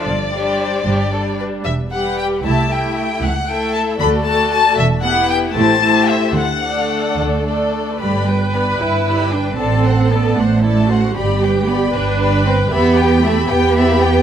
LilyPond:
<<
  \new Staff \with { instrumentName = "Violin section" } { \time 6/8 \key g \mixolydian \tempo 4. = 76 d''2~ d''8 r8 | \key g \major e''8 fis''8 g''8 a''8 g''8 g''8 | fis''8 g''8 a''8 b''8 a''8 a''8 | e''8 fis''8 g''8 a''4 e''8 |
fis''4. r4. | b''8 g''8 b''8 g''8 b''8 g''8 | a''8 fis''8 a''8 fis''8 a''8 fis''8 | b''8 g''8 b''8 g''8 b''8 g''8 |
b''8 g''8 b''8 g''8 b''8 g''8 | }
  \new Staff \with { instrumentName = "Violin section" } { \time 6/8 \key g \mixolydian r8 <g' c''>4 g'8 a'8 b'8 | \key g \major r8 <g' b'>4 <g' e''>8 <g' e''>4 | r8 <a' e''>4 <a' d''>8 <a' d''>4 | r8 <g' b'>4 <g' c''>8 <g' c''>4 |
r8 <a' d''>4. <a' d''>4 | <g' d''>8 b'8 <g' d''>8 b'8 <g' d''>8 b'8 | <a' d''>8 c''8 <a' d''>8 c''8 <a' d''>8 c''8 | <g' d''>8 b'8 <g' d''>8 b'8 <g' d''>8 b'8 |
<g' e''>8 <b' g''>8 <g' e''>8 <b' g''>8 <g' e''>8 <b' g''>8 | }
  \new Staff \with { instrumentName = "Viola section" } { \time 6/8 \key g \mixolydian r8 <g d'>4 <g d'>8 <g d'>4 | \key g \major r8 <g g'>4 <a e'>8 <a e'>4 | r8 <a e'>4 <a fis'>8 <a fis'>4 | r8 <b e'>4 <a e'>8 <a e'>4 |
r8 <a d'>4. <a d'>4 | b'2. | a'4. d'8 e'8 fis'8 | g'4. b'4. |
g'4. g'4. | }
  \new Staff \with { instrumentName = "Cello section" } { \clef bass \time 6/8 \key g \mixolydian g,4. g,4. | \key g \major e,4. c,4. | cis,4. d,4. | e,4. a,4. |
d4. d4. | g4 b8 e'4 d'8 | c'4 b8 a4. | g4 b8 d'4 c'8 |
b4 a8 b4. | }
  \new Staff \with { instrumentName = "Double bass section" } { \clef bass \time 6/8 \key g \mixolydian g,,4. g,,4. | \key g \major e,,4. c,4. | cis,4. d,4. | e,,4. a,,4. |
d,4. d,4. | g,,4. g,,4. | a,,4. a,,4. | g,,4. g,,4. |
e,4. e,4. | }
>>